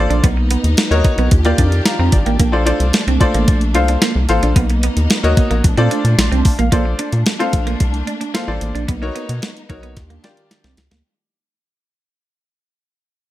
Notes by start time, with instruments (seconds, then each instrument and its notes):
Already playing: string section A3 A#3 D4, grand piano F4 A4 C5 D5
0.10 analog synth bass A#1, clean electric guitar D4, closed hi-hat
0.24 analog synth bass B1, string section B3 D#4, clean electric guitar B3, kick, closed hi-hat
0.37 muted clean electric guitar stroke
0.51 clean electric guitar B3, closed hi-hat
0.64 analog synth bass D#2, closed hi-hat
0.77 muted clean electric guitar stroke, snare, closed hi-hat
0.91 analog synth bass D#2, grand piano D#4 F#4 A#4 C#5, closed hi-hat
1.04 clean electric guitar D#4, kick, closed hi-hat
1.18 analog synth bass B1, clean electric guitar B3, closed hi-hat
1.31 analog synth bass D#2, string section D#3 D4 F4 G4, muted clean electric guitar stroke, kick, closed hi-hat
1.45 clean electric guitar A#3, grand piano F4 G4 A#4 D5, closed hi-hat
1.58 analog synth bass F2, clean electric guitar D4, kick, closed hi-hat
1.72 closed hi-hat
1.86 grand piano F5 A#5, snare, closed hi-hat
1.99 analog synth bass F2, clean electric guitar C4, grand piano A#5
2.12 analog synth bass G#1, grand piano D5, muted clean electric guitar stroke, kick, closed hi-hat
2.26 analog synth bass A1, clean electric guitar A#3, grand piano G5, closed hi-hat
2.40 analog synth bass A#1, string section A3 A#3, clean electric guitar A#3, kick, closed hi-hat
2.52 grand piano F4 A4 C5 D5, muted clean electric guitar stroke
2.65 clean electric guitar D4, grand piano F4 A4 C5 D5, closed hi-hat
2.80 analog synth bass C2, closed hi-hat
2.93 snare, closed hi-hat
3.07 analog synth bass C2, clean electric guitar C4, closed hi-hat
3.20 grand piano F4 A4 C5 D5, muted clean electric guitar stroke, kick, closed hi-hat
3.34 analog synth bass A1, clean electric guitar A#3, closed hi-hat
3.48 analog synth bass A#1, muted clean electric guitar stroke, kick, closed hi-hat
3.61 closed hi-hat
3.74 analog synth bass C2, clean electric guitar D4, grand piano F4 A4 C5 F5, closed hi-hat
3.88 clean electric guitar D4, closed hi-hat
4.02 clean electric guitar A#3, snare, closed hi-hat
4.16 analog synth bass C2
4.29 analog synth bass A1, grand piano F4 A4 C5 F5, muted clean electric guitar stroke, closed hi-hat
4.43 analog synth bass A#1, clean electric guitar D4, closed hi-hat
4.56 analog synth bass B1, string section B3 D#4, clean electric guitar B3, kick, closed hi-hat
4.70 muted clean electric guitar stroke, closed hi-hat
4.83 clean electric guitar B3, closed hi-hat
4.97 analog synth bass D#2, closed hi-hat
5.10 muted clean electric guitar stroke, snare, closed hi-hat
5.23 analog synth bass D#2, grand piano F#4 A#4 C#5 D#5, closed hi-hat
5.37 clean electric guitar A#3, kick, closed hi-hat
5.51 analog synth bass A#1, clean electric guitar A#3, closed hi-hat
5.64 analog synth bass A#1, string section A3 D4, muted clean electric guitar stroke, kick, closed hi-hat
5.77 analog synth bass A#2, clean electric guitar C4, grand piano F4 A4 C5 D5, closed hi-hat
5.91 clean electric guitar D4, closed hi-hat
6.05 analog synth bass A#2, closed hi-hat
6.18 analog synth bass A#1, grand piano C6, snare, closed hi-hat
6.32 analog synth bass C2, clean electric guitar C4, closed hi-hat
6.45 grand piano A5, muted clean electric guitar stroke, kick, open hi-hat
6.59 analog synth bass A#1, clean electric guitar A#3, grand piano F5, closed hi-hat
6.72 analog synth bass A#1, string section A3 A#3 D4, clean electric guitar A#3, grand piano F4 A4 C5 D5, kick, closed hi-hat
6.85 muted clean electric guitar stroke
6.99 clean electric guitar D4, closed hi-hat
7.12 analog synth bass A#2, closed hi-hat
7.26 snare, closed hi-hat
7.39 clean electric guitar C4, grand piano F4 A4 C5 F5, closed hi-hat
7.53 analog synth bass A#1, muted clean electric guitar stroke, kick, closed hi-hat
7.67 clean electric guitar A#3, closed hi-hat
7.80 analog synth bass C2, muted clean electric guitar stroke, kick, closed hi-hat
7.94 closed hi-hat
8.07 clean electric guitar D4, closed hi-hat
8.21 clean electric guitar D4, closed hi-hat
8.34 clean electric guitar A#3, grand piano F4 A4 C5 F5, snare, closed hi-hat
8.47 analog synth bass A1, grand piano F4 A4 C5 D5
8.61 analog synth bass A1, muted clean electric guitar stroke, closed hi-hat
8.75 analog synth bass A#1, clean electric guitar D4, closed hi-hat
8.88 analog synth bass B1, clean electric guitar B3, string section B3 D#4, kick, closed hi-hat
9.02 grand piano D#4 F#4 A#4 C#5, muted clean electric guitar stroke
9.15 clean electric guitar B3, closed hi-hat
9.29 analog synth bass B2, closed hi-hat
9.42 muted clean electric guitar stroke, snare, closed hi-hat
9.57 closed hi-hat
9.69 analog synth bass B1, grand piano D#4 F#4 A#4 C#5, clean electric guitar D#4, kick, closed hi-hat
9.83 clean electric guitar B3, closed hi-hat
9.96 analog synth bass D#2, string section D#3 D4 F4 G4, muted clean electric guitar stroke, kick, snare, closed hi-hat
10.10 clean electric guitar A#3, closed hi-hat
10.23 clean electric guitar D4, grand piano F4 G4 A#4 D5, snare, closed hi-hat
10.37 closed hi-hat
10.51 snare, closed hi-hat
10.64 analog synth bass C2, clean electric guitar C4, snare
10.77 analog synth bass C#2, muted clean electric guitar stroke, snare, closed hi-hat
10.91 analog synth bass D2, clean electric guitar A#3, snare, closed hi-hat